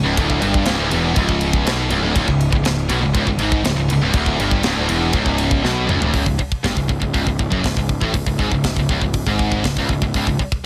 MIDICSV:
0, 0, Header, 1, 8, 480
1, 0, Start_track
1, 0, Key_signature, 4, "minor"
1, 0, Tempo, 498753
1, 164, Time_signature, 4, 2, 24, 8
1, 10256, End_track
2, 0, Start_track
2, 0, Title_t, "Distorted electric guitar"
2, 0, Program_c, 0, 30
2, 41, Note_on_c, 0, 37, 104
2, 155, Note_off_c, 0, 37, 0
2, 167, Note_on_c, 0, 38, 111
2, 387, Note_off_c, 0, 38, 0
2, 391, Note_on_c, 0, 43, 100
2, 629, Note_off_c, 0, 43, 0
2, 635, Note_on_c, 0, 37, 105
2, 738, Note_off_c, 0, 37, 0
2, 742, Note_on_c, 0, 38, 104
2, 860, Note_off_c, 0, 38, 0
2, 864, Note_on_c, 0, 40, 93
2, 1096, Note_off_c, 0, 40, 0
2, 1100, Note_on_c, 0, 37, 95
2, 1583, Note_off_c, 0, 37, 0
2, 1593, Note_on_c, 0, 47, 116
2, 1829, Note_off_c, 0, 47, 0
2, 1845, Note_on_c, 0, 37, 98
2, 1933, Note_off_c, 0, 37, 0
2, 1937, Note_on_c, 0, 38, 106
2, 2061, Note_off_c, 0, 38, 0
2, 2067, Note_on_c, 0, 37, 111
2, 2174, Note_off_c, 0, 37, 0
2, 2186, Note_on_c, 0, 37, 72
2, 2384, Note_off_c, 0, 37, 0
2, 2409, Note_on_c, 0, 37, 66
2, 2524, Note_off_c, 0, 37, 0
2, 2536, Note_on_c, 0, 37, 71
2, 2739, Note_off_c, 0, 37, 0
2, 2780, Note_on_c, 0, 47, 98
2, 2895, Note_off_c, 0, 47, 0
2, 2898, Note_on_c, 0, 37, 69
2, 3019, Note_off_c, 0, 37, 0
2, 3030, Note_on_c, 0, 37, 107
2, 3143, Note_off_c, 0, 37, 0
2, 3155, Note_on_c, 0, 37, 81
2, 3256, Note_off_c, 0, 37, 0
2, 3260, Note_on_c, 0, 44, 105
2, 3499, Note_off_c, 0, 44, 0
2, 3502, Note_on_c, 0, 37, 79
2, 3610, Note_off_c, 0, 37, 0
2, 3622, Note_on_c, 0, 37, 76
2, 3726, Note_off_c, 0, 37, 0
2, 3738, Note_on_c, 0, 37, 79
2, 3853, Note_off_c, 0, 37, 0
2, 3865, Note_on_c, 0, 37, 99
2, 3983, Note_off_c, 0, 37, 0
2, 3992, Note_on_c, 0, 38, 108
2, 4226, Note_off_c, 0, 38, 0
2, 4243, Note_on_c, 0, 43, 97
2, 4472, Note_off_c, 0, 43, 0
2, 4483, Note_on_c, 0, 37, 112
2, 4588, Note_off_c, 0, 37, 0
2, 4592, Note_on_c, 0, 38, 89
2, 4707, Note_off_c, 0, 38, 0
2, 4714, Note_on_c, 0, 40, 98
2, 4947, Note_off_c, 0, 40, 0
2, 4952, Note_on_c, 0, 37, 103
2, 5422, Note_off_c, 0, 37, 0
2, 5426, Note_on_c, 0, 47, 110
2, 5642, Note_off_c, 0, 47, 0
2, 5646, Note_on_c, 0, 37, 88
2, 5770, Note_off_c, 0, 37, 0
2, 5774, Note_on_c, 0, 38, 103
2, 5895, Note_off_c, 0, 38, 0
2, 5899, Note_on_c, 0, 37, 100
2, 6006, Note_off_c, 0, 37, 0
2, 6017, Note_on_c, 0, 37, 70
2, 6131, Note_off_c, 0, 37, 0
2, 6385, Note_on_c, 0, 43, 109
2, 6493, Note_off_c, 0, 43, 0
2, 6497, Note_on_c, 0, 37, 68
2, 6607, Note_off_c, 0, 37, 0
2, 6619, Note_on_c, 0, 37, 68
2, 6723, Note_off_c, 0, 37, 0
2, 6735, Note_on_c, 0, 37, 67
2, 6854, Note_off_c, 0, 37, 0
2, 6865, Note_on_c, 0, 37, 99
2, 6961, Note_off_c, 0, 37, 0
2, 6972, Note_on_c, 0, 37, 65
2, 7098, Note_off_c, 0, 37, 0
2, 7110, Note_on_c, 0, 37, 76
2, 7218, Note_off_c, 0, 37, 0
2, 7222, Note_on_c, 0, 42, 85
2, 7337, Note_off_c, 0, 42, 0
2, 7341, Note_on_c, 0, 37, 68
2, 7463, Note_off_c, 0, 37, 0
2, 7474, Note_on_c, 0, 37, 67
2, 7668, Note_off_c, 0, 37, 0
2, 7704, Note_on_c, 0, 45, 96
2, 7824, Note_off_c, 0, 45, 0
2, 7840, Note_on_c, 0, 37, 77
2, 7943, Note_off_c, 0, 37, 0
2, 7955, Note_on_c, 0, 37, 71
2, 8077, Note_off_c, 0, 37, 0
2, 8087, Note_on_c, 0, 44, 98
2, 8196, Note_off_c, 0, 44, 0
2, 8203, Note_on_c, 0, 37, 60
2, 8394, Note_off_c, 0, 37, 0
2, 8432, Note_on_c, 0, 37, 66
2, 8556, Note_off_c, 0, 37, 0
2, 8566, Note_on_c, 0, 37, 83
2, 8671, Note_off_c, 0, 37, 0
2, 8682, Note_on_c, 0, 37, 68
2, 8874, Note_off_c, 0, 37, 0
2, 8923, Note_on_c, 0, 44, 106
2, 9276, Note_off_c, 0, 44, 0
2, 9285, Note_on_c, 0, 37, 74
2, 9404, Note_off_c, 0, 37, 0
2, 9414, Note_on_c, 0, 37, 113
2, 9521, Note_off_c, 0, 37, 0
2, 9535, Note_on_c, 0, 37, 71
2, 9638, Note_off_c, 0, 37, 0
2, 9650, Note_on_c, 0, 37, 71
2, 9767, Note_off_c, 0, 37, 0
2, 9777, Note_on_c, 0, 37, 97
2, 9884, Note_off_c, 0, 37, 0
2, 9899, Note_on_c, 0, 37, 71
2, 10009, Note_off_c, 0, 37, 0
2, 10256, End_track
3, 0, Start_track
3, 0, Title_t, "Distorted electric guitar"
3, 0, Program_c, 1, 30
3, 2458, Note_on_c, 1, 37, 63
3, 2565, Note_off_c, 1, 37, 0
3, 2576, Note_on_c, 1, 37, 73
3, 2759, Note_off_c, 1, 37, 0
3, 3553, Note_on_c, 1, 37, 83
3, 3645, Note_off_c, 1, 37, 0
3, 3782, Note_on_c, 1, 37, 77
3, 3889, Note_off_c, 1, 37, 0
3, 10256, End_track
4, 0, Start_track
4, 0, Title_t, "Distorted electric guitar"
4, 0, Program_c, 2, 30
4, 1139, Note_on_c, 2, 37, 104
4, 1602, Note_off_c, 2, 37, 0
4, 10256, End_track
5, 0, Start_track
5, 0, Title_t, "Picked electric bass"
5, 0, Program_c, 3, 34
5, 37, Note_on_c, 3, 25, 99
5, 152, Note_off_c, 3, 25, 0
5, 168, Note_on_c, 3, 26, 81
5, 389, Note_off_c, 3, 26, 0
5, 404, Note_on_c, 3, 31, 94
5, 627, Note_off_c, 3, 31, 0
5, 648, Note_on_c, 3, 25, 96
5, 757, Note_off_c, 3, 25, 0
5, 761, Note_on_c, 3, 26, 89
5, 873, Note_off_c, 3, 26, 0
5, 884, Note_on_c, 3, 28, 98
5, 1106, Note_off_c, 3, 28, 0
5, 1118, Note_on_c, 3, 25, 100
5, 1565, Note_off_c, 3, 25, 0
5, 1594, Note_on_c, 3, 35, 106
5, 1820, Note_off_c, 3, 35, 0
5, 1829, Note_on_c, 3, 25, 93
5, 1941, Note_off_c, 3, 25, 0
5, 1947, Note_on_c, 3, 26, 110
5, 2064, Note_off_c, 3, 26, 0
5, 2077, Note_on_c, 3, 25, 96
5, 2181, Note_off_c, 3, 25, 0
5, 2187, Note_on_c, 3, 25, 73
5, 2416, Note_off_c, 3, 25, 0
5, 2426, Note_on_c, 3, 25, 92
5, 2543, Note_off_c, 3, 25, 0
5, 2550, Note_on_c, 3, 25, 76
5, 2777, Note_off_c, 3, 25, 0
5, 2787, Note_on_c, 3, 35, 97
5, 2904, Note_off_c, 3, 35, 0
5, 2910, Note_on_c, 3, 25, 85
5, 3020, Note_off_c, 3, 25, 0
5, 3025, Note_on_c, 3, 25, 105
5, 3139, Note_off_c, 3, 25, 0
5, 3145, Note_on_c, 3, 25, 84
5, 3244, Note_off_c, 3, 25, 0
5, 3250, Note_on_c, 3, 32, 89
5, 3486, Note_off_c, 3, 32, 0
5, 3502, Note_on_c, 3, 25, 82
5, 3621, Note_off_c, 3, 25, 0
5, 3627, Note_on_c, 3, 25, 88
5, 3743, Note_off_c, 3, 25, 0
5, 3751, Note_on_c, 3, 25, 82
5, 3863, Note_off_c, 3, 25, 0
5, 3869, Note_on_c, 3, 25, 99
5, 3974, Note_off_c, 3, 25, 0
5, 3980, Note_on_c, 3, 26, 91
5, 4210, Note_off_c, 3, 26, 0
5, 4231, Note_on_c, 3, 31, 86
5, 4456, Note_off_c, 3, 31, 0
5, 4465, Note_on_c, 3, 25, 103
5, 4578, Note_off_c, 3, 25, 0
5, 4584, Note_on_c, 3, 26, 81
5, 4701, Note_off_c, 3, 26, 0
5, 4709, Note_on_c, 3, 28, 93
5, 4935, Note_off_c, 3, 28, 0
5, 4943, Note_on_c, 3, 25, 94
5, 5395, Note_off_c, 3, 25, 0
5, 5429, Note_on_c, 3, 35, 106
5, 5655, Note_off_c, 3, 35, 0
5, 5667, Note_on_c, 3, 25, 83
5, 5780, Note_off_c, 3, 25, 0
5, 5785, Note_on_c, 3, 26, 103
5, 5896, Note_off_c, 3, 26, 0
5, 5902, Note_on_c, 3, 25, 87
5, 6020, Note_off_c, 3, 25, 0
5, 6025, Note_on_c, 3, 25, 72
5, 6142, Note_off_c, 3, 25, 0
5, 6389, Note_on_c, 3, 31, 94
5, 6500, Note_off_c, 3, 31, 0
5, 6506, Note_on_c, 3, 25, 75
5, 6622, Note_off_c, 3, 25, 0
5, 6631, Note_on_c, 3, 25, 80
5, 6745, Note_off_c, 3, 25, 0
5, 6753, Note_on_c, 3, 25, 77
5, 6863, Note_off_c, 3, 25, 0
5, 6869, Note_on_c, 3, 25, 87
5, 6984, Note_off_c, 3, 25, 0
5, 6990, Note_on_c, 3, 25, 75
5, 7105, Note_off_c, 3, 25, 0
5, 7113, Note_on_c, 3, 25, 79
5, 7226, Note_off_c, 3, 25, 0
5, 7232, Note_on_c, 3, 30, 91
5, 7346, Note_off_c, 3, 30, 0
5, 7352, Note_on_c, 3, 25, 76
5, 7466, Note_off_c, 3, 25, 0
5, 7471, Note_on_c, 3, 25, 74
5, 7698, Note_off_c, 3, 25, 0
5, 7711, Note_on_c, 3, 33, 101
5, 7826, Note_off_c, 3, 33, 0
5, 7833, Note_on_c, 3, 25, 72
5, 7947, Note_off_c, 3, 25, 0
5, 7952, Note_on_c, 3, 25, 71
5, 8067, Note_off_c, 3, 25, 0
5, 8076, Note_on_c, 3, 32, 89
5, 8189, Note_off_c, 3, 32, 0
5, 8195, Note_on_c, 3, 25, 80
5, 8421, Note_off_c, 3, 25, 0
5, 8433, Note_on_c, 3, 25, 72
5, 8546, Note_off_c, 3, 25, 0
5, 8551, Note_on_c, 3, 25, 86
5, 8667, Note_off_c, 3, 25, 0
5, 8673, Note_on_c, 3, 25, 76
5, 8900, Note_off_c, 3, 25, 0
5, 8912, Note_on_c, 3, 32, 94
5, 9252, Note_off_c, 3, 32, 0
5, 9278, Note_on_c, 3, 25, 80
5, 9392, Note_off_c, 3, 25, 0
5, 9400, Note_on_c, 3, 25, 87
5, 9513, Note_off_c, 3, 25, 0
5, 9518, Note_on_c, 3, 25, 84
5, 9632, Note_off_c, 3, 25, 0
5, 9640, Note_on_c, 3, 25, 88
5, 9754, Note_off_c, 3, 25, 0
5, 9762, Note_on_c, 3, 25, 90
5, 9875, Note_off_c, 3, 25, 0
5, 9883, Note_on_c, 3, 25, 65
5, 9996, Note_off_c, 3, 25, 0
5, 10256, End_track
6, 0, Start_track
6, 0, Title_t, "Muted distorted electric guitar strokes"
6, 6142, Note_on_c, 9, 29, 56
6, 6239, Note_off_c, 9, 29, 0
6, 10021, Note_on_c, 9, 29, 51
6, 10117, Note_off_c, 9, 29, 0
6, 10256, End_track
7, 0, Start_track
7, 0, Title_t, "Muted picked electric bass strokes"
7, 6148, Note_on_c, 9, 29, 41
7, 6244, Note_off_c, 9, 29, 0
7, 10002, Note_on_c, 9, 29, 39
7, 10098, Note_off_c, 9, 29, 0
7, 10256, End_track
8, 0, Start_track
8, 0, Title_t, "Drums"
8, 168, Note_on_c, 9, 36, 108
8, 168, Note_on_c, 9, 51, 108
8, 264, Note_off_c, 9, 36, 0
8, 265, Note_off_c, 9, 51, 0
8, 286, Note_on_c, 9, 36, 90
8, 382, Note_off_c, 9, 36, 0
8, 401, Note_on_c, 9, 51, 69
8, 498, Note_off_c, 9, 51, 0
8, 522, Note_on_c, 9, 36, 95
8, 619, Note_off_c, 9, 36, 0
8, 630, Note_on_c, 9, 51, 112
8, 639, Note_on_c, 9, 38, 111
8, 726, Note_off_c, 9, 51, 0
8, 736, Note_off_c, 9, 38, 0
8, 879, Note_on_c, 9, 51, 84
8, 975, Note_off_c, 9, 51, 0
8, 1116, Note_on_c, 9, 51, 101
8, 1120, Note_on_c, 9, 36, 110
8, 1212, Note_off_c, 9, 51, 0
8, 1217, Note_off_c, 9, 36, 0
8, 1239, Note_on_c, 9, 36, 83
8, 1335, Note_off_c, 9, 36, 0
8, 1354, Note_on_c, 9, 51, 74
8, 1451, Note_off_c, 9, 51, 0
8, 1476, Note_on_c, 9, 36, 99
8, 1573, Note_off_c, 9, 36, 0
8, 1602, Note_on_c, 9, 51, 98
8, 1612, Note_on_c, 9, 38, 113
8, 1699, Note_off_c, 9, 51, 0
8, 1708, Note_off_c, 9, 38, 0
8, 1833, Note_on_c, 9, 51, 76
8, 1929, Note_off_c, 9, 51, 0
8, 2076, Note_on_c, 9, 36, 118
8, 2077, Note_on_c, 9, 51, 96
8, 2172, Note_off_c, 9, 36, 0
8, 2173, Note_off_c, 9, 51, 0
8, 2193, Note_on_c, 9, 36, 79
8, 2289, Note_off_c, 9, 36, 0
8, 2315, Note_on_c, 9, 51, 64
8, 2411, Note_off_c, 9, 51, 0
8, 2430, Note_on_c, 9, 36, 92
8, 2526, Note_off_c, 9, 36, 0
8, 2550, Note_on_c, 9, 51, 91
8, 2560, Note_on_c, 9, 38, 113
8, 2646, Note_off_c, 9, 51, 0
8, 2656, Note_off_c, 9, 38, 0
8, 2785, Note_on_c, 9, 51, 80
8, 2881, Note_off_c, 9, 51, 0
8, 3026, Note_on_c, 9, 51, 91
8, 3028, Note_on_c, 9, 36, 110
8, 3122, Note_off_c, 9, 51, 0
8, 3124, Note_off_c, 9, 36, 0
8, 3146, Note_on_c, 9, 36, 80
8, 3242, Note_off_c, 9, 36, 0
8, 3259, Note_on_c, 9, 51, 77
8, 3355, Note_off_c, 9, 51, 0
8, 3387, Note_on_c, 9, 36, 104
8, 3483, Note_off_c, 9, 36, 0
8, 3508, Note_on_c, 9, 51, 99
8, 3518, Note_on_c, 9, 38, 121
8, 3604, Note_off_c, 9, 51, 0
8, 3614, Note_off_c, 9, 38, 0
8, 3751, Note_on_c, 9, 51, 78
8, 3848, Note_off_c, 9, 51, 0
8, 3979, Note_on_c, 9, 51, 108
8, 3982, Note_on_c, 9, 36, 115
8, 4075, Note_off_c, 9, 51, 0
8, 4078, Note_off_c, 9, 36, 0
8, 4102, Note_on_c, 9, 36, 82
8, 4198, Note_off_c, 9, 36, 0
8, 4230, Note_on_c, 9, 51, 62
8, 4327, Note_off_c, 9, 51, 0
8, 4344, Note_on_c, 9, 36, 85
8, 4441, Note_off_c, 9, 36, 0
8, 4458, Note_on_c, 9, 51, 107
8, 4467, Note_on_c, 9, 38, 123
8, 4554, Note_off_c, 9, 51, 0
8, 4564, Note_off_c, 9, 38, 0
8, 4703, Note_on_c, 9, 51, 84
8, 4799, Note_off_c, 9, 51, 0
8, 4936, Note_on_c, 9, 51, 91
8, 4942, Note_on_c, 9, 36, 113
8, 5033, Note_off_c, 9, 51, 0
8, 5038, Note_off_c, 9, 36, 0
8, 5061, Note_on_c, 9, 36, 83
8, 5157, Note_off_c, 9, 36, 0
8, 5180, Note_on_c, 9, 51, 79
8, 5276, Note_off_c, 9, 51, 0
8, 5304, Note_on_c, 9, 36, 98
8, 5400, Note_off_c, 9, 36, 0
8, 5436, Note_on_c, 9, 38, 66
8, 5532, Note_off_c, 9, 38, 0
8, 5670, Note_on_c, 9, 45, 90
8, 5766, Note_off_c, 9, 45, 0
8, 5793, Note_on_c, 9, 43, 107
8, 5889, Note_off_c, 9, 43, 0
8, 5906, Note_on_c, 9, 36, 82
8, 5907, Note_on_c, 9, 46, 53
8, 6002, Note_off_c, 9, 36, 0
8, 6004, Note_off_c, 9, 46, 0
8, 6028, Note_on_c, 9, 36, 79
8, 6124, Note_off_c, 9, 36, 0
8, 6150, Note_on_c, 9, 36, 69
8, 6246, Note_off_c, 9, 36, 0
8, 6272, Note_on_c, 9, 36, 90
8, 6368, Note_off_c, 9, 36, 0
8, 6393, Note_on_c, 9, 36, 84
8, 6397, Note_on_c, 9, 46, 52
8, 6407, Note_on_c, 9, 38, 112
8, 6489, Note_off_c, 9, 36, 0
8, 6494, Note_off_c, 9, 46, 0
8, 6503, Note_off_c, 9, 38, 0
8, 6513, Note_on_c, 9, 36, 80
8, 6609, Note_off_c, 9, 36, 0
8, 6634, Note_on_c, 9, 36, 90
8, 6730, Note_off_c, 9, 36, 0
8, 6753, Note_on_c, 9, 36, 74
8, 6849, Note_off_c, 9, 36, 0
8, 6874, Note_on_c, 9, 36, 81
8, 6877, Note_on_c, 9, 46, 50
8, 6970, Note_off_c, 9, 36, 0
8, 6973, Note_off_c, 9, 46, 0
8, 6994, Note_on_c, 9, 36, 76
8, 7090, Note_off_c, 9, 36, 0
8, 7115, Note_on_c, 9, 36, 88
8, 7211, Note_off_c, 9, 36, 0
8, 7235, Note_on_c, 9, 36, 86
8, 7331, Note_off_c, 9, 36, 0
8, 7355, Note_on_c, 9, 36, 78
8, 7359, Note_on_c, 9, 46, 56
8, 7369, Note_on_c, 9, 38, 100
8, 7451, Note_off_c, 9, 36, 0
8, 7456, Note_off_c, 9, 46, 0
8, 7465, Note_off_c, 9, 38, 0
8, 7476, Note_on_c, 9, 36, 74
8, 7572, Note_off_c, 9, 36, 0
8, 7596, Note_on_c, 9, 36, 75
8, 7692, Note_off_c, 9, 36, 0
8, 7713, Note_on_c, 9, 36, 81
8, 7809, Note_off_c, 9, 36, 0
8, 7832, Note_on_c, 9, 46, 58
8, 7834, Note_on_c, 9, 36, 84
8, 7929, Note_off_c, 9, 46, 0
8, 7930, Note_off_c, 9, 36, 0
8, 7954, Note_on_c, 9, 36, 83
8, 8050, Note_off_c, 9, 36, 0
8, 8074, Note_on_c, 9, 36, 66
8, 8171, Note_off_c, 9, 36, 0
8, 8195, Note_on_c, 9, 36, 82
8, 8291, Note_off_c, 9, 36, 0
8, 8312, Note_on_c, 9, 46, 62
8, 8316, Note_on_c, 9, 36, 79
8, 8322, Note_on_c, 9, 38, 117
8, 8408, Note_off_c, 9, 46, 0
8, 8412, Note_off_c, 9, 36, 0
8, 8418, Note_off_c, 9, 38, 0
8, 8436, Note_on_c, 9, 36, 75
8, 8532, Note_off_c, 9, 36, 0
8, 8557, Note_on_c, 9, 36, 95
8, 8653, Note_off_c, 9, 36, 0
8, 8676, Note_on_c, 9, 36, 73
8, 8772, Note_off_c, 9, 36, 0
8, 8791, Note_on_c, 9, 46, 54
8, 8796, Note_on_c, 9, 36, 80
8, 8887, Note_off_c, 9, 46, 0
8, 8893, Note_off_c, 9, 36, 0
8, 8917, Note_on_c, 9, 36, 75
8, 9013, Note_off_c, 9, 36, 0
8, 9039, Note_on_c, 9, 36, 89
8, 9136, Note_off_c, 9, 36, 0
8, 9159, Note_on_c, 9, 36, 88
8, 9255, Note_off_c, 9, 36, 0
8, 9279, Note_on_c, 9, 36, 79
8, 9281, Note_on_c, 9, 46, 61
8, 9291, Note_on_c, 9, 38, 110
8, 9375, Note_off_c, 9, 36, 0
8, 9378, Note_off_c, 9, 46, 0
8, 9387, Note_off_c, 9, 38, 0
8, 9400, Note_on_c, 9, 36, 77
8, 9496, Note_off_c, 9, 36, 0
8, 9520, Note_on_c, 9, 36, 81
8, 9616, Note_off_c, 9, 36, 0
8, 9642, Note_on_c, 9, 36, 86
8, 9738, Note_off_c, 9, 36, 0
8, 9760, Note_on_c, 9, 46, 57
8, 9761, Note_on_c, 9, 36, 92
8, 9857, Note_off_c, 9, 46, 0
8, 9858, Note_off_c, 9, 36, 0
8, 9884, Note_on_c, 9, 36, 84
8, 9980, Note_off_c, 9, 36, 0
8, 10003, Note_on_c, 9, 36, 76
8, 10099, Note_off_c, 9, 36, 0
8, 10124, Note_on_c, 9, 36, 91
8, 10220, Note_off_c, 9, 36, 0
8, 10256, End_track
0, 0, End_of_file